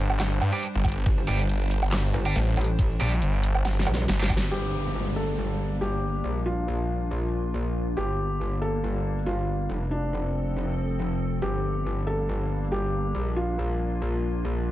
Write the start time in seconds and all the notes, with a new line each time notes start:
Already playing: G1 G3 D4 C5
0.10 low woodblock
0.20 snare, clap, closed hi-hat, ride, low woodblock
0.41 G2, closed hi-hat, low woodblock
0.53 G3 D4 G4
0.63 closed hi-hat, ride
0.75 G1
0.85 kick, closed hi-hat, low woodblock
0.88 closed hi-hat
0.92 closed hi-hat
1.06 G1, kick, closed hi-hat, ride
1.28 G1 G3 D4 G4, closed hi-hat
1.49 closed hi-hat, ride
1.71 open hi-hat
1.83 low woodblock
1.92 snare, clap, closed hi-hat, ride
2.14 G1, closed hi-hat
2.26 G3 D4 G4, low woodblock
2.36 A1, closed hi-hat, ride
2.57 A1, closed hi-hat, low woodblock
2.61 closed hi-hat
2.64 closed hi-hat
2.79 kick, closed hi-hat, ride
3.00 A#1 G3 D4 G4, closed hi-hat
3.22 G1, closed hi-hat, ride
3.43 open hi-hat
3.55 low woodblock
3.65 snare, closed hi-hat, ride, low woodblock
3.79 snare
3.87 A#1, closed hi-hat, low woodblock
3.94 snare
4.08 G1, snare, closed hi-hat, ride
4.20 G1 G3 D4 G4, snare
4.30 kick, closed hi-hat, low woodblock
4.34 snare, closed hi-hat
4.37 closed hi-hat
4.51 G1 G3 A#3 D4 G4, downlifter
5.16 A4
5.81 G4
6.24 A#1 A#3 F4
6.46 F4
7.97 G1 G3 A#3 D4 G4
8.62 A4
9.26 F4
9.69 F1 F3 C4 A4
9.91 D4
11.42 G1 G3 A#3 D4 G4
12.07 A4
12.72 G4
13.15 A#1 A#3 F4
13.36 F4